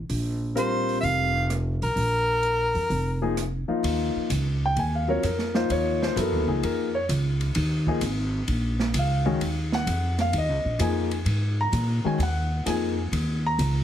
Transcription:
0.09 0.99 A#1 medium
0.09 open hi-hat soft
0.55 1.29 G3 medium
0.55 1.28 C4 medium
0.55 1.29 F4 medium
0.55 1.29 A#4 medium
0.55 0.97 C5 medium
0.55 closed hi-hat soft
0.89 open hi-hat soft
1.01 1.78 F1 medium
1.01 1.06 E5 medium
1.01 open hi-hat soft
1.05 1.51 F5 loud
1.50 cross-stick medium
1.50 closed hi-hat medium
1.82 1.95 B1 medium
1.82 3.34 A#4 loud
1.82 open hi-hat soft
1.96 2.71 A#1 medium
1.96 open hi-hat soft
2.43 closed hi-hat soft
2.75 2.89 F2 medium
2.75 open hi-hat soft
2.90 3.64 F1 medium
2.90 open hi-hat soft
3.22 3.35 F3 medium
3.22 3.35 A#3 medium
3.22 3.36 D#4 medium
3.22 3.36 G#4 medium
3.37 cross-stick medium
3.37 closed hi-hat medium
3.68 4.27 F3 medium
3.68 4.27 A#3 medium
3.68 4.27 D#4 medium
3.68 4.27 F4 medium
3.68 muted upright bass stroke soft
3.83 4.13 D#2 medium
3.83 ride medium
4.15 muted upright bass stroke soft
4.30 4.75 C#2 medium
4.30 hi-hat pedal medium
4.30 ride medium
4.66 4.78 G5 medium
4.76 5.21 D#2 medium
4.76 4.93 G#5 medium
4.76 ride medium
4.95 5.09 F5 medium
5.08 5.21 F#3 medium
5.08 5.22 C4 medium
5.08 5.22 F4 medium
5.08 5.22 A#4 medium
5.08 5.24 C#5 medium
5.23 5.68 F2 medium
5.23 5.55 A#4 medium
5.23 hi-hat pedal soft
5.23 ride medium
5.39 snare soft
5.54 6.13 F3 medium
5.54 6.13 A#3 medium
5.54 6.13 D#4 medium
5.54 6.13 F4 medium
5.54 5.69 C5 medium
5.54 snare soft
5.69 6.14 D#2 medium
5.69 6.01 C#5 medium
5.69 ride medium
6.02 6.16 C5 medium
6.02 snare medium
6.16 6.32 F#2 medium
6.16 6.44 F#3 medium
6.16 6.45 B3 medium
6.16 6.45 E4 medium
6.16 6.45 A4 medium
6.16 6.49 A#4 medium
6.16 hi-hat pedal medium
6.16 ride medium
6.32 6.46 D#2 medium
6.47 6.61 C#2 medium
6.47 6.88 F3 medium
6.47 6.88 A#3 medium
6.47 6.88 D#4 medium
6.47 6.88 G#4 medium
6.63 7.08 F2 medium
6.63 6.94 A#4 medium
6.63 ride medium
6.95 7.03 C#5 medium
7.09 7.54 C#2 medium
7.09 hi-hat pedal medium
7.09 ride medium
7.41 ride soft
7.55 8.00 D#2 medium
7.55 ride medium
7.87 8.00 F3 medium
7.87 8.01 A#3 medium
7.87 8.01 D#4 medium
7.87 8.01 G#4 medium
7.87 kick soft
8.01 8.46 G#1 medium
8.01 hi-hat pedal medium
8.01 ride medium
8.48 8.93 A#1 medium
8.48 ride medium
8.79 snare soft
8.94 9.39 C#2 medium
8.94 hi-hat pedal medium
8.94 ride medium
8.99 9.71 F5 medium
9.26 9.39 D#3 medium
9.26 9.39 G#3 medium
9.26 9.39 C#4 medium
9.26 9.39 F#4 medium
9.41 9.86 D#2 medium
9.41 ride medium
9.72 10.17 F#5 medium
9.72 snare soft
9.86 10.32 F2 medium
9.86 hi-hat pedal soft
9.86 ride medium
10.18 10.34 F5 loud
10.18 snare soft
10.18 ride soft
10.33 10.49 D#2 medium
10.33 ride medium
10.38 10.79 D#5 medium
10.49 10.64 C#2 medium
10.65 10.78 A#1 medium
10.79 11.24 F2 medium
10.79 11.08 F3 medium
10.79 11.09 A#3 medium
10.79 11.09 D#4 medium
10.79 11.09 G#4 medium
10.79 hi-hat pedal medium
10.79 ride medium
10.83 11.56 G#5 medium
11.11 ride soft
11.25 11.71 G#2 medium
11.25 ride medium
11.61 12.03 A#5 loud
11.72 12.02 A#2 medium
11.72 hi-hat pedal medium
11.72 ride medium
12.04 12.18 D#3 medium
12.04 12.18 G#3 medium
12.04 12.18 C#4 medium
12.04 12.18 F#4 medium
12.04 12.20 G#5 medium
12.04 muted upright bass stroke soft
12.18 12.64 D#2 medium
12.18 ride medium
12.23 12.64 F#5 medium
12.66 13.11 F2 medium
12.66 12.94 F3 medium
12.66 12.95 A#3 medium
12.66 12.95 D#4 medium
12.66 12.94 G#4 medium
12.66 13.42 G#5 medium
12.66 hi-hat pedal medium
12.66 ride medium
13.12 13.57 D#2 medium
13.12 ride medium
13.46 13.84 A#5 loud
13.58 13.84 C#2 loud
13.58 hi-hat pedal medium
13.58 ride medium

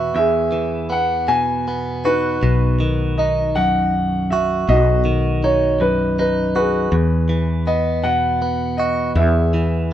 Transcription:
0.00 0.13 E2 medium
0.00 0.11 E3 medium
0.00 0.89 B3 medium
0.00 0.18 F#4 medium
0.00 0.14 E5 medium
0.15 2.42 E2 medium
0.15 1.26 G#4 medium
0.15 0.93 E5 medium
0.52 2.37 E3 medium
0.90 1.67 B3 soft
0.90 1.27 F#5 medium
1.28 2.37 B2 medium
1.28 2.06 G#5 medium
1.68 3.19 B3 medium
2.05 3.15 D#4 soft
2.05 4.32 F#4 medium
2.05 3.21 B4 medium
2.42 4.64 B1 medium
2.42 2.80 B2 medium
2.80 4.64 D#3 medium
3.17 3.94 D#4 soft
3.17 3.53 D#5 medium
3.55 4.64 F#2 medium
3.55 4.33 F#5 medium
4.30 6.55 F#4 medium
4.30 4.69 E5 medium
4.68 6.88 B1 medium
4.68 5.06 B2 medium
4.68 5.78 F#4 medium
4.68 5.45 D#5 medium
5.05 6.87 D#3 medium
5.44 6.18 D#4 soft
5.44 5.78 C#5 medium
5.80 6.87 F#2 medium
5.80 6.15 B4 medium
6.19 6.88 D#4 medium
6.19 6.53 B4 medium
6.55 6.95 F#4 medium
6.55 7.64 G#4 medium
6.55 7.70 B4 medium
6.92 9.12 E2 medium
6.92 9.16 E2 medium
7.29 9.54 E3 medium
7.67 8.41 B3 medium
7.67 8.05 D#5 medium
8.03 9.12 B2 medium
8.03 8.81 F#5 medium
8.42 9.91 B3 medium
8.77 9.12 F#4 medium
8.77 9.17 D#5 medium
9.15 9.93 E2 medium
9.15 9.93 G#4 medium
9.15 9.93 E5 medium
9.54 9.93 E3 medium

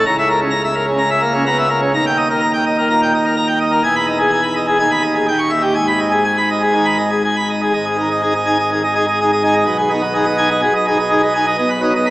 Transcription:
0.06 0.97 C#1 loud
0.06 0.97 C#2 medium
0.06 0.16 A#5 loud
0.19 0.28 E5 medium
0.30 0.39 A#4 medium
0.42 0.51 C#3 medium
0.51 0.62 A#5 medium
0.64 0.74 E5 medium
0.75 0.85 A#4 medium
0.88 0.98 C#3 medium
0.98 1.91 C#1 medium
0.98 1.91 C#2 medium
0.98 1.09 A#5 medium
1.10 1.21 E5 medium
1.22 1.43 A#3 medium
1.22 1.33 A#4 medium
1.34 1.45 C#3 medium
1.46 1.67 B3 medium
1.46 1.57 A#5 medium
1.58 1.69 E5 medium
1.70 1.80 A#4 medium
1.82 1.92 C#3 medium
1.94 3.80 D#1 medium
1.94 3.80 D#2 medium
1.94 2.05 A#5 loud
2.06 2.17 G5 medium
2.17 2.28 D#5 medium
2.30 2.41 A#4 medium
2.41 2.52 A#5 medium
2.54 2.64 G5 medium
2.66 2.76 D#5 medium
2.78 2.88 A#4 medium
2.90 3.11 A#2 medium
2.90 3.00 A#5 medium
3.03 3.12 G5 medium
3.14 3.24 D#5 medium
3.25 3.35 A#4 medium
3.36 3.47 A#5 medium
3.47 3.59 G5 medium
3.60 3.71 D#5 medium
3.72 3.82 A#4 medium
3.84 4.77 E1 medium
3.84 4.77 E2 medium
3.84 3.95 G#5 medium
3.96 4.07 B5 medium
4.07 4.18 D#5 medium
4.20 4.31 G#4 medium
4.31 4.42 G#5 medium
4.43 4.54 B5 medium
4.56 4.66 D#5 medium
4.67 4.78 G#4 medium
4.79 5.26 D#1 medium
4.79 5.26 D#2 medium
4.79 4.90 G#5 medium
4.91 5.02 B5 medium
5.02 5.14 D#5 medium
5.15 5.26 G#4 medium
5.28 5.75 D#1 medium
5.28 5.76 D#2 medium
5.28 5.39 G5 medium
5.38 5.50 C#6 medium
5.50 5.62 E5 medium
5.62 5.74 G4 medium
5.75 7.70 G#1 medium
5.75 7.69 G#2 medium
5.75 5.87 G#5 medium
5.88 5.99 B5 medium
5.99 6.11 D#5 medium
6.11 6.23 G#4 medium
6.24 6.36 G#5 medium
6.37 6.49 B5 medium
6.50 6.61 D#5 medium
6.62 6.73 G#4 medium
6.73 6.97 D#3 medium
6.73 6.85 G#5 medium
6.85 6.97 B5 medium
6.98 7.10 D#5 medium
7.10 7.22 G#4 medium
7.24 7.35 G#5 medium
7.36 7.48 B5 medium
7.49 7.61 D#5 medium
7.62 7.73 G#4 medium
7.73 9.62 G#1 medium
7.73 9.62 G#2 medium
7.73 7.85 D#5 medium
7.85 7.97 G#4 medium
7.97 8.09 D#3 medium
7.97 8.09 D#4 medium
8.11 8.22 D#5 medium
8.22 8.33 D#4 medium
8.22 8.33 G#4 medium
8.34 8.46 D#5 medium
8.46 8.57 D#4 medium
8.46 8.58 G#5 medium
8.59 8.70 D#5 medium
8.72 8.82 D#3 medium
8.72 8.82 G#4 medium
8.84 8.94 D#5 medium
8.95 9.06 D#4 medium
8.95 9.06 G#4 medium
9.08 9.18 D#5 medium
9.21 9.31 D#4 medium
9.21 9.31 G#4 medium
9.32 9.42 D#5 medium
9.44 9.54 D#4 medium
9.44 9.54 G#5 medium
9.54 9.64 D#5 medium
9.66 10.60 B1 medium
9.66 10.60 B2 medium
9.66 9.77 D#5 medium
9.78 9.89 G#4 medium
9.90 10.01 B3 medium
9.90 10.01 D#4 medium
10.02 10.13 D#5 medium
10.14 10.25 D#4 medium
10.14 10.25 G#4 medium
10.25 10.37 D#5 medium
10.38 10.49 D#4 medium
10.38 10.49 G#5 medium
10.50 10.61 D#5 medium
10.62 11.55 B1 medium
10.62 11.55 B2 medium
10.62 10.73 G#4 medium
10.75 10.86 D#5 medium
10.87 10.98 D#4 medium
10.87 10.97 G#4 medium
10.99 11.10 D#5 medium
11.10 11.21 D#4 medium
11.10 11.21 G#4 medium
11.23 11.33 D#5 medium
11.35 11.45 D#4 medium
11.35 11.45 G#5 medium
11.46 11.56 D#5 medium
11.58 12.10 B1 medium
11.58 12.10 B2 medium
11.58 11.69 D#5 medium
11.70 11.81 B4 medium
11.82 11.93 F#3 medium
11.82 11.93 D#4 medium
11.95 12.05 D#5 medium
12.06 12.10 D#4 medium
12.06 12.10 B4 medium

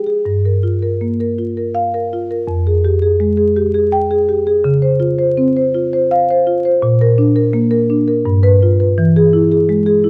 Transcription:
0.00 0.24 F3 medium
0.00 0.19 G4 soft
0.07 0.26 G#4 soft
0.25 2.44 G2 medium
0.45 0.75 A#4 soft
0.63 0.93 F4 soft
0.82 1.12 A#4 soft
1.01 1.31 A#3 soft
1.20 1.50 A#4 medium
1.39 1.68 F4 soft
1.57 1.87 A#4 soft
1.75 2.05 F5 medium
1.94 2.24 A#4 medium
2.13 2.42 F4 soft
2.31 2.49 A#4 medium
2.47 4.61 F2 medium
2.67 2.96 G#4 medium
2.85 3.14 G4 medium
3.02 3.32 G#4 medium
3.20 3.50 G#3 medium
3.37 3.68 G#4 medium
3.56 3.86 G4 medium
3.74 4.04 G#4 medium
3.92 4.22 G5 medium
4.11 4.40 G#4 medium
4.29 4.58 G4 medium
4.47 4.65 G#4 medium
4.64 6.79 C#3 medium
4.82 5.12 C5 medium
5.00 5.30 F4 medium
5.18 5.49 C5 medium
5.37 5.68 C4 medium
5.57 5.86 C5 medium
5.75 6.04 F4 medium
5.93 6.23 C5 medium
6.11 6.40 F5 medium
6.30 6.59 C5 medium
6.47 6.76 F4 medium
6.65 6.83 C5 medium
6.82 8.21 A#2 medium
7.01 7.30 A#4 medium
7.18 7.47 D4 medium
7.36 7.65 A#4 medium
7.53 7.82 A#3 medium
7.71 8.00 A#4 medium
7.90 8.19 D4 medium
8.08 8.26 A#4 medium
8.25 8.95 G2 medium
8.43 8.72 B4 medium
8.63 8.91 F4 medium
8.80 8.98 B4 medium
8.98 10.10 E3 medium
9.16 9.44 G#4 medium
9.33 9.61 E4 medium
9.52 9.79 G#4 medium
9.69 9.97 G#3 medium
9.86 10.10 G#4 medium
10.04 10.10 E4 medium

